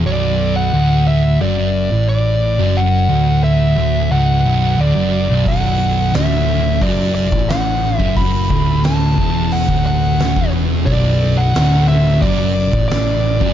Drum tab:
HH |----------------|----------------|o---o---o---o---|o---o---o---o---|
SD |----------------|----------------|----o-------o---|----o-------o---|
BD |----------------|----------------|o-------o--o---o|o-o---o--o---o--|

HH |o---o---o---o---|
SD |----o-------o---|
BD |o-------o--o---o|